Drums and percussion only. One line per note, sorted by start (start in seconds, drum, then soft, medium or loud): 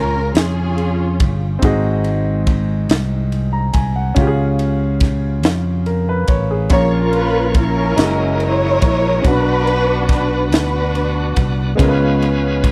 0.35 snare loud
0.35 ride medium
0.78 ride soft
1.20 kick loud
1.20 ride medium
1.62 kick loud
1.62 ride medium
2.04 ride medium
2.47 kick medium
2.47 ride medium
2.89 snare loud
2.89 ride medium
3.32 ride medium
3.73 kick medium
3.73 ride medium
4.16 kick loud
4.16 ride medium
4.59 ride medium
5.00 kick loud
5.00 snare soft
5.00 ride medium
5.43 snare loud
5.43 ride medium
5.86 ride soft
6.28 kick medium
6.28 ride medium
6.70 kick loud
6.70 ride medium
7.13 ride medium
7.54 kick loud
7.54 ride medium
7.98 snare loud
7.98 ride medium
8.40 ride medium
8.82 kick loud
8.82 ride medium
9.24 kick loud
9.24 ride medium
9.67 ride medium
10.09 kick loud
10.09 snare soft
10.09 ride medium
10.52 snare loud
10.52 ride medium
10.95 ride medium
11.36 kick medium
11.36 ride medium
11.79 kick loud
11.79 ride medium
12.22 ride medium
12.64 kick loud
12.64 ride medium